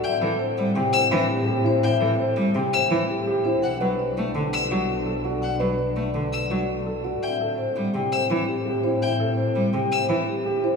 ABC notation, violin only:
X:1
M:5/4
L:1/8
Q:1/4=167
K:Ador
V:1 name="Violin"
g z4 e' z4 | g z4 e' z4 | f z4 e' z4 | f z4 e' z4 |
g z4 e' z4 | g z4 e' z4 |]